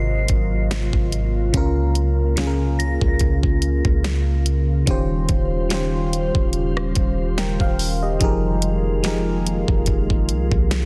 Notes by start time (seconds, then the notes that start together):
Already playing: G#1 G#2 C3 F#3 A#3 F4 A#4 C5 D#5 C7
0.28 G#1, kick, closed hi-hat
0.71 snare, closed hi-hat
0.93 G#1, kick
1.12 closed hi-hat
1.53 C#2 C#3 C#4 F4, kick, closed hi-hat
1.57 A#4
1.95 closed hi-hat
2.36 C#3 C#4 F4, snare, closed hi-hat
2.40 G#4
2.47 A#4
2.79 A#6, closed hi-hat
3.01 C#2, kick
3.19 kick, closed hi-hat
3.43 kick
3.62 closed hi-hat
3.85 C#2, kick
4.04 snare, closed hi-hat
4.46 closed hi-hat
4.86 D#1 C#3 D#3 G3 C#4 F4 G4 C5, kick, closed hi-hat
4.91 C5
5.29 D#1, kick, closed hi-hat
5.69 D#3 C#4 F4 G4, snare, closed hi-hat
5.74 C5
6.13 closed hi-hat
6.35 D#1, kick
6.53 closed hi-hat
6.77 cross-stick
6.95 D#1, kick, closed hi-hat
7.38 A#4 G5, snare, closed hi-hat
7.60 D#1 F5, kick
7.79 open hi-hat
8.03 G4 D#5
8.19 F1 D#3 F3 G#3 A#3 D#4 F4 G4 G#4, kick, closed hi-hat
8.24 A#4
8.62 closed hi-hat
9.03 F3 D#4 G4 G#4, snare, closed hi-hat
9.07 A#4
9.47 closed hi-hat
9.68 F1, kick
9.86 kick, closed hi-hat
10.10 kick
10.29 C2, closed hi-hat
10.52 C2, kick
10.71 snare, closed hi-hat